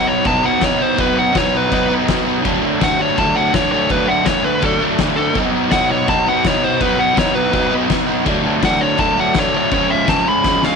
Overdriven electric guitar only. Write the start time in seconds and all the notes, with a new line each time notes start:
Already playing: B2 F#3
0.06 B3 D#4
0.11 F#3
0.24 B2 F#3 B3
0.29 D#4
0.42 F#3 B3 D#4
0.47 B2
0.60 B2 F#3 B3
0.65 D#4
0.79 B3 D#4
0.83 F#3
0.97 B2 F#3 B3
1.01 D#4
1.16 B3 D#4
1.21 F#3
1.33 B2 F#3 B3
1.38 D#4
1.52 B3 D#4
1.57 F#3
1.69 B2 F#3 B3 D#4
1.88 F#3 B3 D#4
1.92 B2
2.07 B2 F#3 B3
2.11 D#4
2.25 B3 D#4
2.29 F#3
2.44 D3 F#3 A3
2.48 D4
2.62 A3 D4
2.67 F#3
2.81 D3 F#3 A3
2.86 D4
2.99 A3 D4
3.03 F#3
3.17 D3 F#3 A3
3.22 D4
3.35 F#3 A3 D4
3.39 D3
3.52 D3 F#3 A3
3.57 D4
3.71 F#3 A3 D4
3.89 D3 F#3 A3
3.93 D4
4.06 A3 D4
4.11 F#3
4.24 D3 F#3 A3
4.29 D4
4.43 F#3 A3 D4
4.61 D3 F#3 A3
4.66 D4
4.79 F#3 A3 D4
4.84 D3
4.98 D3 F#3 A3
5.02 D4
5.17 A3 D4
5.21 F#3
5.34 B2 F#3 B3
5.39 D#4
5.52 B3 D#4
5.57 F#3
5.70 B2 F#3 B3
5.75 D#4
5.89 B3 D#4
5.94 F#3
6.07 B2 F#3 B3
6.11 D#4
6.26 F#3 B3 D#4
6.30 B2
6.44 B2 F#3 B3
6.48 D#4
6.62 B3 D#4
6.66 F#3
6.79 B2 F#3 B3
6.84 D#4
6.98 F#3 B3 D#4
7.15 B2 F#3 B3 D#4
7.33 B3 D#4
7.38 F#3
7.52 B2 F#3 B3
7.56 D#4
7.70 F#3 B3 D#4
7.74 B2
7.89 B2 F#3 B3
7.93 D#4
8.07 B3 D#4
8.11 F#3
8.25 D3 F#3 A3 D4
8.43 A3 D4
8.47 F#3
8.62 D3 F#3 A3 D4
8.80 A3 D4
8.84 F#3
8.98 D3 F#3 A3 D4
9.17 F#3 A3 D4
9.21 D3
9.34 D3 F#3 A3
9.39 D4
9.53 A3 D4
9.57 F#3
9.71 C#3 F3 G#3
9.76 C#4
9.89 G#3 C#4
9.93 F3
10.07 C#3 F3 G#3 C#4
10.25 G#3 C#4
10.30 F3
10.44 C#3 F3 G#3
10.48 C#4
10.62 F3 G#3 C#4
10.66 C#3